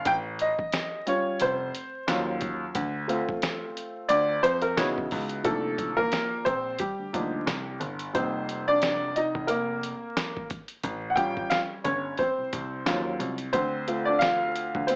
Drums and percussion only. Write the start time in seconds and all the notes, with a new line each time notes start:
0.05 kick, closed hi-hat
0.39 closed hi-hat
0.59 kick
0.72 snare, closed hi-hat
1.07 closed hi-hat
1.40 closed hi-hat
1.75 closed hi-hat
2.08 snare, closed hi-hat
2.41 kick, closed hi-hat
2.75 kick, closed hi-hat
3.09 closed hi-hat
3.29 kick
3.42 snare, closed hi-hat
3.77 closed hi-hat
4.09 closed hi-hat
4.44 closed hi-hat
4.62 closed hi-hat
4.77 snare, closed hi-hat
4.98 kick
5.11 kick, open hi-hat
5.29 closed hi-hat
5.44 kick, closed hi-hat
5.78 kick, closed hi-hat
5.98 kick
6.12 snare, closed hi-hat
6.46 kick, closed hi-hat
6.78 kick, closed hi-hat
7.14 kick, closed hi-hat
7.47 snare, closed hi-hat
7.81 closed hi-hat
7.99 closed hi-hat
8.15 kick, closed hi-hat
8.49 closed hi-hat
8.81 snare, closed hi-hat
9.16 closed hi-hat
9.35 kick
9.48 closed hi-hat
9.83 closed hi-hat
10.17 snare, closed hi-hat
10.37 kick
10.50 kick, closed hi-hat
10.68 closed hi-hat
10.84 kick, closed hi-hat
11.17 kick, closed hi-hat
11.37 kick
11.51 snare, closed hi-hat
11.85 kick, closed hi-hat
12.17 kick, closed hi-hat
12.53 kick, closed hi-hat
12.86 snare, closed hi-hat
13.20 closed hi-hat
13.38 closed hi-hat
13.53 kick, closed hi-hat
13.88 closed hi-hat
14.21 snare, closed hi-hat
14.55 closed hi-hat
14.75 kick
14.88 closed hi-hat